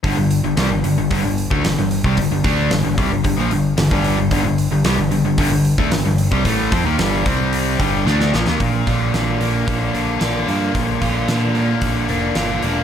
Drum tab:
HH |o-o-o-o-o-o-o-o-|o-o-o-o-o-o-o-o-|o-o-o-o-o-o-o-o-|o-o-o-o-o-o-----|
SD |----o-------o---|----o-------o---|----o-------o---|----o-------oooo|
BD |o-------o--o---o|o-o---o-o----o--|o-------o--o---o|o-o---o---o-----|

HH |o-o-o-o-o-o-o-o-|o-o-o-o-o-o-o-o-|
SD |----o-------o---|----o-------o---|
BD |o-o-----o-------|o-o-----o-------|